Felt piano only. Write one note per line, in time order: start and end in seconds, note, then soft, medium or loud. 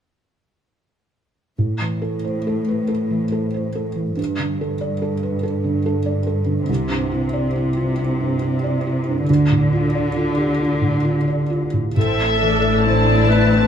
1.58 4.14 A2 soft
1.81 2.16 E3 soft
2.02 2.37 A4 soft
2.24 2.59 C5 soft
2.47 2.81 A4 soft
2.68 2.90 B4 soft
2.88 3.24 A4 soft
3.11 3.46 E3 soft
3.32 3.67 A4 soft
3.54 3.89 C5 soft
3.75 4.10 A4 soft
3.96 4.17 E3 soft
4.17 6.64 G2 soft
4.39 4.72 D3 soft
4.61 4.94 A4 soft
4.81 5.14 D5 soft
5.02 5.35 A4 soft
5.23 5.44 B4 soft
5.43 5.77 A4 soft
5.64 5.98 D3 soft
5.86 6.19 A4 soft
6.06 6.39 D5 soft
6.27 6.60 A4 soft
6.46 6.68 D3 soft
6.69 9.24 C2 soft
6.90 7.24 G2 soft
7.12 7.46 E4 soft
7.33 7.68 D5 soft
7.56 7.90 E4 soft
7.77 7.98 F4 soft
7.99 8.33 E4 soft
8.21 8.55 G2 soft
8.42 8.76 E4 soft
8.64 8.98 D5 soft
8.87 9.20 E4 soft
9.09 9.29 G2 soft
9.30 11.93 D2 soft
9.51 9.85 A2 soft
9.73 10.07 F4 soft
9.95 10.29 D5 soft
10.16 10.51 F4 soft
10.37 10.59 G4 soft
10.60 10.95 F4 soft
10.81 11.17 A2 soft
11.05 11.41 F4 soft
11.27 11.64 D5 soft
11.50 11.87 F4 soft
11.73 11.95 A2 soft
11.97 13.67 A2 soft
12.42 13.12 E3 soft
12.87 13.26 A3 soft
12.87 13.26 E4 soft
12.87 13.27 C5 soft
13.30 13.67 A3 soft